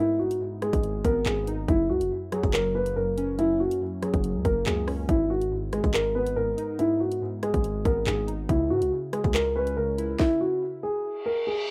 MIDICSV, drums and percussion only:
0, 0, Header, 1, 2, 480
1, 0, Start_track
1, 0, Key_signature, 5, "minor"
1, 0, Tempo, 425532
1, 1900, Time_signature, 4, 2, 24, 8
1, 13205, End_track
2, 0, Start_track
2, 0, Title_t, "Drums"
2, 349, Note_on_c, 9, 42, 72
2, 462, Note_off_c, 9, 42, 0
2, 701, Note_on_c, 9, 37, 89
2, 701, Note_on_c, 9, 42, 69
2, 814, Note_off_c, 9, 37, 0
2, 814, Note_off_c, 9, 42, 0
2, 826, Note_on_c, 9, 36, 101
2, 826, Note_on_c, 9, 42, 76
2, 939, Note_off_c, 9, 36, 0
2, 939, Note_off_c, 9, 42, 0
2, 941, Note_on_c, 9, 42, 72
2, 1054, Note_off_c, 9, 42, 0
2, 1179, Note_on_c, 9, 36, 95
2, 1180, Note_on_c, 9, 42, 80
2, 1292, Note_off_c, 9, 36, 0
2, 1292, Note_off_c, 9, 42, 0
2, 1419, Note_on_c, 9, 39, 115
2, 1532, Note_off_c, 9, 39, 0
2, 1663, Note_on_c, 9, 42, 85
2, 1776, Note_off_c, 9, 42, 0
2, 1900, Note_on_c, 9, 36, 119
2, 1900, Note_on_c, 9, 42, 69
2, 2013, Note_off_c, 9, 36, 0
2, 2013, Note_off_c, 9, 42, 0
2, 2267, Note_on_c, 9, 42, 73
2, 2380, Note_off_c, 9, 42, 0
2, 2620, Note_on_c, 9, 37, 88
2, 2620, Note_on_c, 9, 42, 71
2, 2732, Note_off_c, 9, 42, 0
2, 2733, Note_off_c, 9, 37, 0
2, 2746, Note_on_c, 9, 36, 104
2, 2747, Note_on_c, 9, 42, 43
2, 2859, Note_off_c, 9, 36, 0
2, 2860, Note_off_c, 9, 42, 0
2, 2860, Note_on_c, 9, 39, 122
2, 2973, Note_off_c, 9, 39, 0
2, 3227, Note_on_c, 9, 42, 85
2, 3340, Note_off_c, 9, 42, 0
2, 3583, Note_on_c, 9, 42, 89
2, 3695, Note_off_c, 9, 42, 0
2, 3820, Note_on_c, 9, 42, 68
2, 3933, Note_off_c, 9, 42, 0
2, 4188, Note_on_c, 9, 42, 74
2, 4301, Note_off_c, 9, 42, 0
2, 4540, Note_on_c, 9, 42, 70
2, 4541, Note_on_c, 9, 37, 86
2, 4653, Note_off_c, 9, 42, 0
2, 4654, Note_off_c, 9, 37, 0
2, 4666, Note_on_c, 9, 36, 100
2, 4666, Note_on_c, 9, 42, 76
2, 4778, Note_off_c, 9, 42, 0
2, 4779, Note_off_c, 9, 36, 0
2, 4781, Note_on_c, 9, 42, 71
2, 4894, Note_off_c, 9, 42, 0
2, 5019, Note_on_c, 9, 36, 101
2, 5020, Note_on_c, 9, 42, 84
2, 5132, Note_off_c, 9, 36, 0
2, 5133, Note_off_c, 9, 42, 0
2, 5260, Note_on_c, 9, 39, 114
2, 5372, Note_off_c, 9, 39, 0
2, 5500, Note_on_c, 9, 37, 92
2, 5502, Note_on_c, 9, 46, 59
2, 5613, Note_off_c, 9, 37, 0
2, 5615, Note_off_c, 9, 46, 0
2, 5740, Note_on_c, 9, 36, 120
2, 5740, Note_on_c, 9, 42, 69
2, 5853, Note_off_c, 9, 36, 0
2, 5853, Note_off_c, 9, 42, 0
2, 6108, Note_on_c, 9, 42, 72
2, 6221, Note_off_c, 9, 42, 0
2, 6460, Note_on_c, 9, 42, 70
2, 6461, Note_on_c, 9, 37, 85
2, 6573, Note_off_c, 9, 42, 0
2, 6574, Note_off_c, 9, 37, 0
2, 6586, Note_on_c, 9, 36, 103
2, 6587, Note_on_c, 9, 42, 43
2, 6699, Note_off_c, 9, 36, 0
2, 6700, Note_off_c, 9, 42, 0
2, 6700, Note_on_c, 9, 39, 124
2, 6813, Note_off_c, 9, 39, 0
2, 7067, Note_on_c, 9, 42, 88
2, 7180, Note_off_c, 9, 42, 0
2, 7423, Note_on_c, 9, 42, 86
2, 7536, Note_off_c, 9, 42, 0
2, 7660, Note_on_c, 9, 42, 71
2, 7773, Note_off_c, 9, 42, 0
2, 8027, Note_on_c, 9, 42, 75
2, 8140, Note_off_c, 9, 42, 0
2, 8379, Note_on_c, 9, 37, 84
2, 8379, Note_on_c, 9, 42, 71
2, 8492, Note_off_c, 9, 37, 0
2, 8492, Note_off_c, 9, 42, 0
2, 8505, Note_on_c, 9, 36, 103
2, 8505, Note_on_c, 9, 42, 77
2, 8618, Note_off_c, 9, 36, 0
2, 8618, Note_off_c, 9, 42, 0
2, 8619, Note_on_c, 9, 42, 69
2, 8732, Note_off_c, 9, 42, 0
2, 8858, Note_on_c, 9, 36, 100
2, 8859, Note_on_c, 9, 42, 81
2, 8971, Note_off_c, 9, 36, 0
2, 8971, Note_off_c, 9, 42, 0
2, 9099, Note_on_c, 9, 39, 112
2, 9212, Note_off_c, 9, 39, 0
2, 9342, Note_on_c, 9, 42, 88
2, 9455, Note_off_c, 9, 42, 0
2, 9579, Note_on_c, 9, 36, 118
2, 9579, Note_on_c, 9, 42, 68
2, 9692, Note_off_c, 9, 36, 0
2, 9692, Note_off_c, 9, 42, 0
2, 9947, Note_on_c, 9, 42, 73
2, 10060, Note_off_c, 9, 42, 0
2, 10299, Note_on_c, 9, 42, 71
2, 10300, Note_on_c, 9, 37, 91
2, 10412, Note_off_c, 9, 42, 0
2, 10413, Note_off_c, 9, 37, 0
2, 10426, Note_on_c, 9, 36, 106
2, 10427, Note_on_c, 9, 42, 45
2, 10539, Note_off_c, 9, 36, 0
2, 10540, Note_off_c, 9, 42, 0
2, 10540, Note_on_c, 9, 39, 119
2, 10653, Note_off_c, 9, 39, 0
2, 10907, Note_on_c, 9, 42, 84
2, 11020, Note_off_c, 9, 42, 0
2, 11262, Note_on_c, 9, 42, 84
2, 11375, Note_off_c, 9, 42, 0
2, 11499, Note_on_c, 9, 36, 113
2, 11499, Note_on_c, 9, 38, 90
2, 11612, Note_off_c, 9, 36, 0
2, 11612, Note_off_c, 9, 38, 0
2, 13205, End_track
0, 0, End_of_file